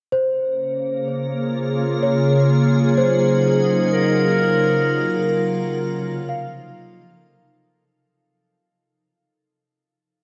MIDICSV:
0, 0, Header, 1, 5, 480
1, 0, Start_track
1, 0, Key_signature, -5, "minor"
1, 0, Tempo, 952381
1, 58, Time_signature, 4, 2, 24, 8
1, 5158, End_track
2, 0, Start_track
2, 0, Title_t, "Celesta"
2, 0, Program_c, 0, 8
2, 62, Note_on_c, 0, 72, 54
2, 147, Control_c, 0, 64, 127
2, 1022, Note_on_c, 0, 73, 50
2, 1024, Control_c, 0, 64, 0
2, 1113, Control_c, 0, 64, 127
2, 1422, Note_off_c, 0, 72, 0
2, 1476, Note_off_c, 0, 73, 0
2, 1500, Note_on_c, 0, 72, 57
2, 1986, Control_c, 0, 64, 0
2, 2861, Note_off_c, 0, 72, 0
2, 3043, Control_c, 0, 64, 127
2, 3170, Note_on_c, 0, 77, 51
2, 3905, Control_c, 0, 64, 0
2, 4536, Note_off_c, 0, 77, 0
2, 5158, End_track
3, 0, Start_track
3, 0, Title_t, "Clarinet"
3, 0, Program_c, 1, 71
3, 1979, Note_on_c, 1, 70, 97
3, 2918, Note_off_c, 1, 70, 0
3, 5158, End_track
4, 0, Start_track
4, 0, Title_t, "Ambient pad"
4, 0, Program_c, 2, 92
4, 66, Note_on_c, 2, 49, 62
4, 101, Note_on_c, 2, 58, 80
4, 450, Note_on_c, 2, 65, 70
4, 485, Note_on_c, 2, 68, 74
4, 1308, Note_on_c, 2, 54, 75
4, 1405, Note_off_c, 2, 58, 0
4, 1405, Note_off_c, 2, 65, 0
4, 1449, Note_on_c, 2, 63, 83
4, 2139, Note_on_c, 2, 65, 71
4, 2359, Note_off_c, 2, 68, 0
4, 2362, Note_off_c, 2, 63, 0
4, 2401, Note_on_c, 2, 70, 76
4, 2932, Note_on_c, 2, 48, 69
4, 2933, Note_off_c, 2, 70, 0
4, 2934, Note_off_c, 2, 54, 0
4, 2942, Note_off_c, 2, 49, 0
4, 2974, Note_on_c, 2, 53, 74
4, 3113, Note_on_c, 2, 63, 73
4, 3316, Note_off_c, 2, 65, 0
4, 3361, Note_on_c, 2, 69, 73
4, 3893, Note_off_c, 2, 53, 0
4, 3894, Note_off_c, 2, 69, 0
4, 3895, Note_off_c, 2, 48, 0
4, 3895, Note_off_c, 2, 63, 0
4, 5158, End_track
5, 0, Start_track
5, 0, Title_t, "Harmonium"
5, 0, Program_c, 3, 20
5, 1982, Note_on_c, 3, 58, 65
5, 1989, Note_on_c, 3, 65, 66
5, 3948, Note_off_c, 3, 58, 0
5, 3952, Note_off_c, 3, 65, 0
5, 5158, End_track
0, 0, End_of_file